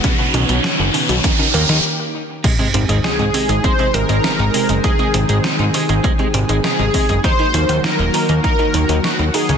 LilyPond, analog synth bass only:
\new Staff \with { instrumentName = "Analog synth bass" } { \clef bass \time 4/4 \key ees \minor \tempo 4 = 100 r8 b,,16 b,,16 r16 fis,,16 r16 b,,16 r8 ees,16 ees,16 r4 | \key aes \mixolydian r8 aes,,16 aes,,16 r16 aes,16 r16 aes,,16 r8 aes,,16 aes,,16 r16 aes,,16 r16 ges,,16 | r8 aes,,16 aes,,16 r16 aes,16 r16 aes,,16 r8 aes,,16 aes,,16 r16 aes,,16 r16 ges,,16 | r8 ees,16 ees,16 r16 ees,,16 r16 ees,16 r8 ees,16 ees,16 r16 ees,16 r16 des,16 | }